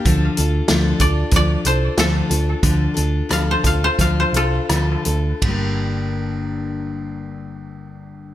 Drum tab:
RD |--------|--------|b-------|
HH |xxxxxxxx|xxxxxxxx|--------|
SD |--o---o-|--r---r-|--------|
BD |o--oo---|o--oo---|o-------|